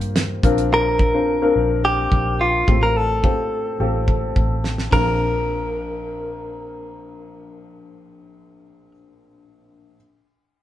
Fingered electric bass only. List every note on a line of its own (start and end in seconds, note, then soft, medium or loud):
0.00 0.39 G2 medium
0.43 1.52 A#1 medium
1.56 2.08 A#1 medium
2.12 2.64 A#1 medium
2.68 3.20 A1 medium
3.80 4.32 A1 medium
4.36 4.90 A1 medium
4.93 8.91 A#1 medium